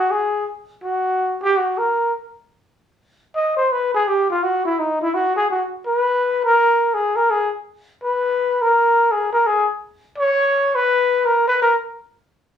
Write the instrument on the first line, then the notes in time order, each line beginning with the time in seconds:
trumpet
Already playing: F#4
0.11 G#4
0.83 F#4
1.42 G4
1.57 F#4
1.78 A#4
3.35 D#5
3.57 C5
3.72 B4
3.94 G#4
4.08 G4
4.30 F4
4.43 F#4
4.65 E4
4.79 D#4
5.02 E4
5.14 F#4
5.36 G#4
5.51 F#4
5.86 B4
6.44 A#4
6.94 G#4
7.16 A#4
7.30 G#4
8.03 B4
8.62 A#4
9.12 G#4
9.33 A#4
9.46 G#4
10.18 C#5
10.75 B4
11.26 A#4
11.48 B4
11.62 A#4